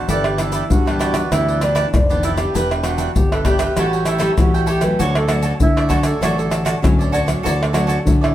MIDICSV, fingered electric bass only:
0, 0, Header, 1, 2, 480
1, 0, Start_track
1, 0, Key_signature, 2, "major"
1, 0, Tempo, 612870
1, 70, Time_signature, 4, 2, 24, 8
1, 6538, End_track
2, 0, Start_track
2, 0, Title_t, "Fingered electric bass"
2, 0, Program_c, 0, 33
2, 65, Note_on_c, 0, 31, 97
2, 475, Note_off_c, 0, 31, 0
2, 549, Note_on_c, 0, 43, 97
2, 957, Note_off_c, 0, 43, 0
2, 1031, Note_on_c, 0, 38, 90
2, 1439, Note_off_c, 0, 38, 0
2, 1512, Note_on_c, 0, 29, 97
2, 1920, Note_off_c, 0, 29, 0
2, 1995, Note_on_c, 0, 28, 80
2, 2401, Note_off_c, 0, 28, 0
2, 2472, Note_on_c, 0, 31, 97
2, 2880, Note_off_c, 0, 31, 0
2, 2956, Note_on_c, 0, 33, 94
2, 3362, Note_off_c, 0, 33, 0
2, 3435, Note_on_c, 0, 33, 86
2, 3841, Note_off_c, 0, 33, 0
2, 3910, Note_on_c, 0, 38, 88
2, 4318, Note_off_c, 0, 38, 0
2, 4391, Note_on_c, 0, 50, 89
2, 4798, Note_off_c, 0, 50, 0
2, 4864, Note_on_c, 0, 33, 87
2, 5274, Note_off_c, 0, 33, 0
2, 5346, Note_on_c, 0, 38, 97
2, 5756, Note_off_c, 0, 38, 0
2, 5832, Note_on_c, 0, 38, 96
2, 6239, Note_off_c, 0, 38, 0
2, 6308, Note_on_c, 0, 50, 91
2, 6538, Note_off_c, 0, 50, 0
2, 6538, End_track
0, 0, End_of_file